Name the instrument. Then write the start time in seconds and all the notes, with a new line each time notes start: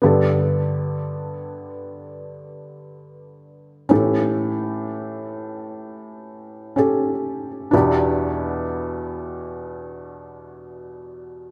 felt piano
0.02 G2 D3 B3 G4
0.06 A4
3.89 A2 E3 C#4 G4 A4
6.76 C#4 G4 A4
7.71 E2 B2 D4 E4
7.75 G4